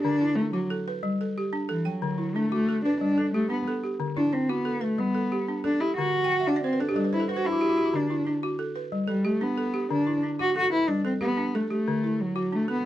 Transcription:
0.00 0.37 D4 loud
0.00 0.20 G4 medium
0.00 0.20 A4 medium
0.05 0.37 D3 medium
0.21 0.70 E4 medium
0.36 0.52 A3 loud
0.36 0.87 D4 medium
0.53 0.68 F#3 medium
0.53 0.86 F#4 medium
0.70 1.19 A4 medium
0.88 1.20 B4 medium
1.03 1.36 G3 medium
1.21 1.68 A4 medium
1.38 1.86 G4 medium
1.53 1.85 D4 medium
1.69 1.87 E3 medium
1.69 2.18 A4 medium
1.85 2.37 F#3 medium
1.85 2.18 G5 medium
2.02 2.35 D3 medium
2.18 2.68 E4 medium
2.36 2.52 A3 loud
2.36 2.85 D4 medium
2.52 2.82 A3 loud
2.52 2.85 F#4 medium
2.69 3.17 A4 medium
2.85 3.00 D4 medium
2.85 3.18 B4 medium
3.01 3.34 G3 medium
3.01 3.31 D4 medium
3.18 3.66 A4 medium
3.34 3.49 A3 loud
3.34 3.82 G4 medium
3.50 3.66 B3 medium
3.50 3.83 D4 medium
3.68 4.16 A4 medium
3.84 4.16 G4 medium
4.00 4.32 D3 medium
4.17 4.35 D4 medium
4.17 4.66 E4 medium
4.33 4.50 C4 medium
4.33 4.82 D4 medium
4.49 4.84 B3 medium
4.49 4.82 F#4 medium
4.65 5.13 A4 medium
4.81 5.01 A3 medium
4.81 5.14 B4 medium
4.98 5.31 G3 medium
4.98 5.48 B3 medium
5.15 5.63 A4 medium
5.32 5.80 G4 medium
5.48 5.81 D4 medium
5.64 5.82 D4 medium
5.64 6.13 A4 medium
5.80 5.96 E4 loud
5.80 6.13 G4 medium
5.97 6.30 D3 medium
5.97 6.49 F#4 loud
6.24 6.38 G5 medium
6.32 6.46 F#5 medium
6.40 6.54 E5 medium
6.47 6.63 D4 loud
6.47 6.80 F#4 medium
6.47 6.63 F#5 medium
6.56 6.71 D5 medium
6.64 6.81 C4 medium
6.64 6.79 C5 medium
6.73 6.87 B4 medium
6.80 6.96 D4 medium
6.80 6.95 A4 medium
6.89 7.03 G4 medium
6.96 7.28 G3 medium
6.96 7.11 A4 medium
7.04 7.19 B4 medium
7.13 7.28 E4 medium
7.13 7.27 C5 medium
7.20 7.35 A4 medium
7.29 7.47 F#4 loud
7.29 7.44 B4 medium
7.36 7.52 C5 medium
7.45 7.77 D4 medium
7.45 7.60 E4 medium
7.45 7.97 E4 loud
7.52 7.68 F#4 medium
7.61 7.76 G4 medium
7.69 7.84 F#4 medium
7.77 7.93 G4 medium
7.85 8.01 F#4 medium
7.94 8.26 D3 medium
7.94 8.27 D4 medium
8.10 8.59 E4 medium
8.27 8.76 D4 medium
8.43 8.76 F#4 medium
8.59 9.06 A4 medium
8.76 9.08 B4 medium
8.92 9.25 G3 medium
9.07 9.27 G3 medium
9.07 9.56 A4 medium
9.25 9.44 A3 medium
9.25 9.73 G4 medium
9.41 9.91 B3 medium
9.41 9.74 D4 medium
9.58 10.07 A4 medium
9.74 10.06 G4 medium
9.91 10.23 D3 medium
9.91 10.21 D4 medium
10.07 10.56 E4 medium
10.23 10.72 D4 medium
10.39 10.72 F#4 medium
10.39 10.55 F#4 loud
10.56 10.71 F#4 loud
10.56 11.04 A4 medium
10.72 10.90 E4 medium
10.72 11.05 B4 medium
10.88 11.21 G3 medium
10.88 11.05 D4 medium
11.05 11.12 C4 medium
11.05 11.54 A4 medium
11.21 11.56 B3 loud
11.21 11.69 G4 medium
11.37 11.70 D4 medium
11.55 11.70 A3 medium
11.55 12.03 A4 medium
11.70 12.23 A3 medium
11.70 12.03 G4 medium
11.88 12.20 D3 medium
12.04 12.52 E4 medium
12.21 12.57 F#3 medium
12.36 12.68 F#4 medium
12.52 12.70 A3 medium
12.52 12.85 D4 medium
12.68 12.85 B3 medium
12.68 12.85 A4 medium

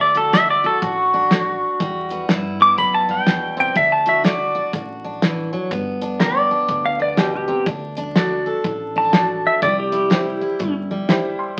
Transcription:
0.00 0.64 D2 medium
0.00 0.29 D3 medium
0.00 1.12 D4 medium
0.00 0.17 D5 medium
0.15 0.33 F#4 medium
0.15 0.33 A4 medium
0.15 closed hi-hat medium
0.33 0.78 A3 medium
0.33 0.63 F#4 medium
0.33 0.49 E5 loud
0.33 snare loud
0.33 closed hi-hat medium
0.50 0.66 D5 medium
0.64 1.78 F#4 medium
0.64 0.82 A4 medium
0.82 1.62 A1 medium
0.82 1.27 A2 medium
0.82 2.25 F#4 medium
0.82 kick loud
0.82 closed hi-hat medium
1.14 1.78 D4 medium
1.31 1.76 A3 medium
1.31 snare loud
1.31 closed hi-hat medium
1.80 2.25 E2 medium
1.80 2.20 E2 medium
1.80 3.08 G3 medium
1.80 kick loud
1.80 closed hi-hat medium
2.10 2.59 B3 medium
2.10 closed hi-hat medium
2.29 2.70 G2 medium
2.29 2.74 E3 medium
2.29 3.76 E4 medium
2.29 snare loud
2.29 closed hi-hat medium
2.60 3.76 B3 medium
2.60 2.77 D6 medium
2.78 3.19 F#2 medium
2.78 3.23 B2 medium
2.78 2.94 B5 medium
2.78 kick loud
2.78 closed hi-hat medium
2.94 3.10 A5 medium
3.09 3.76 G3 medium
3.09 3.58 G5 loud
3.26 3.68 E2 medium
3.26 3.56 B2 medium
3.26 snare loud
3.26 closed hi-hat medium
3.57 3.75 C3 medium
3.57 3.75 G5 medium
3.75 4.56 D2 medium
3.75 4.21 D3 medium
3.75 5.04 D4 medium
3.75 3.92 E5 medium
3.75 kick loud
3.75 closed hi-hat medium
3.92 4.08 A5 medium
4.06 4.24 F#4 medium
4.06 4.24 E5 medium
4.06 closed hi-hat medium
4.24 4.69 A3 medium
4.24 4.54 F#4 medium
4.24 4.72 D5 loud
4.24 snare loud
4.24 closed hi-hat medium
4.55 5.69 F#4 medium
4.73 5.54 A1 medium
4.73 5.18 A2 medium
4.73 kick loud
4.73 closed hi-hat medium
5.04 6.01 D4 medium
5.22 5.52 E3 medium
5.22 snare loud
5.22 closed hi-hat medium
5.53 5.71 F#3 medium
5.71 6.51 G1 medium
5.71 6.16 G2 medium
5.71 6.98 B3 medium
5.71 kick loud
5.71 closed hi-hat medium
6.02 6.51 D4 medium
6.02 closed hi-hat medium
6.20 6.65 D3 medium
6.20 7.65 G4 medium
6.20 6.37 A#4 loud
6.20 snare loud
6.20 closed hi-hat medium
6.37 6.84 D5 medium
6.51 7.65 D4 medium
6.68 7.49 D2 medium
6.68 7.14 G2 medium
6.68 kick loud
6.68 closed hi-hat medium
6.86 7.01 F5 medium
6.99 7.65 B3 medium
6.99 7.17 D5 medium
7.17 7.47 B2 medium
7.17 7.34 G4 medium
7.17 snare loud
7.17 closed hi-hat medium
7.35 7.66 G4 medium
7.48 7.66 C3 medium
7.66 8.47 D2 medium
7.66 8.12 D3 medium
7.66 7.96 D4 medium
7.66 kick loud
7.66 closed hi-hat medium
7.97 8.15 D4 medium
7.97 closed hi-hat medium
8.16 8.61 F#3 medium
8.16 8.94 D4 medium
8.16 8.56 F#4 medium
8.16 8.56 A4 medium
8.16 8.56 D5 medium
8.16 snare loud
8.16 closed hi-hat medium
8.46 9.60 A4 medium
8.64 9.44 A1 medium
8.64 9.10 A2 medium
8.64 kick loud
8.64 closed hi-hat medium
8.96 9.60 D4 medium
8.96 9.45 A5 loud
9.13 9.58 F#3 medium
9.13 9.54 F#4 medium
9.13 9.54 A4 medium
9.13 9.54 D5 medium
9.13 snare loud
9.13 closed hi-hat medium
9.47 9.62 E5 loud
9.62 10.42 C2 medium
9.62 10.07 C3 medium
9.62 10.90 G3 medium
9.62 9.78 D5 medium
9.62 kick loud
9.62 closed hi-hat medium
9.79 10.74 G4 loud
9.92 10.10 E4 medium
9.92 closed hi-hat medium
10.10 10.56 E3 medium
10.10 10.51 E4 medium
10.10 10.40 E4 medium
10.10 10.51 G4 medium
10.10 10.51 C5 medium
10.10 snare loud
10.10 closed hi-hat medium
10.41 11.55 E4 medium
10.59 11.40 G1 medium
10.59 11.05 G2 medium
10.59 kick loud
10.59 closed hi-hat medium
10.91 11.58 G3 medium
11.08 11.54 E3 medium
11.08 11.49 E4 medium
11.08 11.49 G4 medium
11.08 11.49 C5 medium
11.08 11.37 E5 medium
11.08 snare loud
11.08 closed hi-hat medium
11.39 11.56 C6 medium

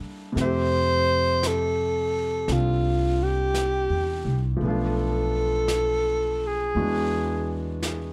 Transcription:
0.00 0.34 G3 medium
0.00 0.36 A#3 soft
0.00 0.37 D4 soft
0.00 0.38 E4 soft
0.00 0.40 A4 medium
0.00 muted upright bass stroke soft
0.32 2.44 F2 medium
0.32 4.59 C3 medium
0.32 4.58 A3 soft
0.37 2.47 C4 medium
0.37 4.63 E5 medium
0.37 brush sweep soft
0.37 snare soft
0.41 4.64 G4 medium
0.41 1.49 C5 loud
1.43 brush sweep soft
1.43 snare soft
1.43 hi-hat pedal soft
1.47 2.54 A4 medium
2.48 3.86 C2 medium
2.48 4.61 C4 soft
2.48 4.61 D4 soft
2.48 4.61 F4 soft
2.48 4.62 A4 soft
2.48 brush sweep soft
2.48 snare soft
2.52 3.25 F4 medium
3.23 4.45 G4 medium
3.54 brush sweep soft
3.54 snare soft
3.54 hi-hat pedal soft
3.90 4.23 E2 medium
4.25 4.58 C2 medium
4.57 6.73 F3 medium
4.57 6.74 A3 soft
4.61 6.71 B1 medium
4.61 6.75 B3 soft
4.61 6.48 A4 medium
4.61 brush sweep soft
4.65 6.75 D4 soft
4.65 6.79 F4 medium
5.68 brush sweep soft
5.68 snare soft
5.68 hi-hat pedal soft
6.47 7.87 G#4 medium
6.75 8.13 E2 medium
6.75 8.13 E3 soft
6.75 8.13 G#3 soft
6.75 8.13 B3 soft
6.75 8.13 D4 soft
6.75 8.13 F#4 soft
6.75 brush sweep soft
7.83 8.13 G#4 soft
7.83 brush sweep soft
7.83 snare soft
7.83 hi-hat pedal soft

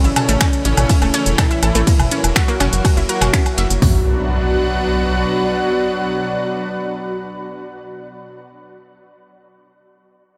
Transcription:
0.00 3.78 E3 medium
0.00 1.85 A3 medium
0.00 1.40 C#4 loud
0.00 1.85 C#4 medium
0.00 2.47 E4 medium
0.00 0.66 F#4 medium
0.00 0.70 B5 medium
0.04 0.13 A1 medium
0.04 0.13 E4 medium
0.04 0.13 E5 medium
0.04 closed hi-hat soft
0.16 0.22 A4 medium
0.16 0.22 A5 medium
0.16 closed hi-hat loud
0.16 mid tom medium
0.16 tambourine medium
0.16 low woodblock medium
0.29 0.37 A1 medium
0.29 0.37 A3 loud
0.29 0.37 A4 medium
0.29 2.65 C#5 medium
0.29 closed hi-hat medium
0.41 0.46 A3 medium
0.41 0.46 A4 medium
0.41 1.87 A5 medium
0.41 finger snap loud
0.41 kick loud
0.41 snare loud
0.41 closed hi-hat medium
0.41 ride medium
0.41 tambourine loud
0.41 low woodblock soft
0.53 closed hi-hat soft
0.65 0.74 A1 loud
0.65 0.74 C#4 medium
0.65 0.74 C#5 medium
0.65 closed hi-hat loud
0.65 tambourine medium
0.77 0.86 A1 medium
0.77 closed hi-hat medium
0.77 mid tom loud
0.77 low woodblock medium
0.89 0.95 E4 medium
0.89 0.95 E5 medium
0.89 kick loud
0.89 closed hi-hat medium
0.89 ride medium
0.89 tambourine medium
1.02 1.10 E1 medium
1.02 1.07 A3 loud
1.02 1.07 A4 medium
1.02 closed hi-hat soft
1.02 low woodblock medium
1.14 1.20 C#4 loud
1.14 1.20 C#5 medium
1.14 closed hi-hat loud
1.14 tambourine medium
1.26 1.35 E1 medium
1.26 closed hi-hat medium
1.38 2.26 E4 medium
1.38 1.44 A4 medium
1.38 1.44 A5 medium
1.38 finger snap loud
1.38 kick loud
1.38 snare loud
1.38 closed hi-hat medium
1.38 mid tom loud
1.38 ride medium
1.38 tambourine medium
1.38 low woodblock medium
1.51 1.59 E4 medium
1.51 1.59 E5 medium
1.51 closed hi-hat soft
1.63 1.71 A1 loud
1.63 1.68 A4 medium
1.63 1.68 A5 medium
1.63 closed hi-hat loud
1.63 tambourine medium
1.63 low woodblock medium
1.75 1.83 A1 medium
1.75 1.83 A3 loud
1.75 1.83 A4 medium
1.75 snare soft
1.75 closed hi-hat medium
1.87 3.80 F#3 medium
1.87 1.93 A#3 medium
1.87 3.80 A#3 medium
1.87 3.81 F#4 medium
1.87 1.93 A#4 medium
1.87 kick loud
1.87 closed hi-hat medium
1.87 ride medium
1.87 tambourine medium
1.99 2.08 F#1 medium
1.99 closed hi-hat soft
1.99 mid tom medium
1.99 low woodblock medium
2.09 2.20 C#4 medium
2.09 2.20 C#5 medium
2.09 3.82 E5 loud
2.09 closed hi-hat loud
2.09 tambourine medium
2.24 2.32 E1 medium
2.24 closed hi-hat medium
2.24 low woodblock soft
2.36 2.41 E4 medium
2.36 2.99 F#4 loud
2.36 2.41 E5 medium
2.36 finger snap loud
2.36 kick loud
2.36 snare loud
2.36 closed hi-hat medium
2.36 ride medium
2.36 tambourine loud
2.48 2.54 A#3 loud
2.48 2.54 A#4 medium
2.48 closed hi-hat soft
2.60 2.69 F#1 loud
2.60 2.66 C#4 loud
2.60 2.66 C#5 medium
2.60 snare loud
2.60 closed hi-hat loud
2.60 mid tom medium
2.60 tambourine medium
2.60 low woodblock medium
2.73 2.81 F#1 medium
2.73 closed hi-hat medium
2.85 2.90 F#4 medium
2.85 2.90 F#5 medium
2.85 kick loud
2.85 closed hi-hat medium
2.85 ride medium
2.85 tambourine medium
2.85 low woodblock medium
2.97 3.05 F#1 medium
2.97 3.05 E4 medium
2.97 3.05 E5 medium
2.97 closed hi-hat soft
3.09 3.73 F#4 loud
3.09 3.15 A#4 medium
3.09 3.15 A#5 medium
3.09 closed hi-hat loud
3.09 tambourine medium
3.21 3.30 F#1 medium
3.21 3.25 F#4 medium
3.21 3.25 F#5 medium
3.21 snare loud
3.21 closed hi-hat medium
3.21 mid tom medium
3.21 tambourine medium
3.21 low woodblock medium
3.33 3.42 C#4 loud
3.33 3.42 C#5 medium
3.33 finger snap loud
3.33 kick loud
3.33 closed hi-hat medium
3.33 ride medium
3.46 closed hi-hat soft
3.46 tambourine medium
3.46 low woodblock soft
3.58 3.66 F#1 loud
3.58 3.66 E5 loud
3.58 3.66 E6 medium
3.58 snare loud
3.58 closed hi-hat loud
3.58 tambourine medium
3.70 3.79 F#1 medium
3.70 closed hi-hat medium
3.82 5.25 B1 medium
3.82 8.38 B2 medium
3.82 8.38 F#3 medium
3.82 4.05 B3 loud
3.82 8.38 D4 medium
3.82 8.38 F#4 loud
3.82 8.38 F#4 medium
3.82 8.38 B4 medium
3.82 8.38 F#5 medium
3.82 kick loud
3.82 floor tom loud
3.82 open hi-hat loud
3.82 impact medium
3.90 8.46 D5 medium
3.97 8.49 B5 medium

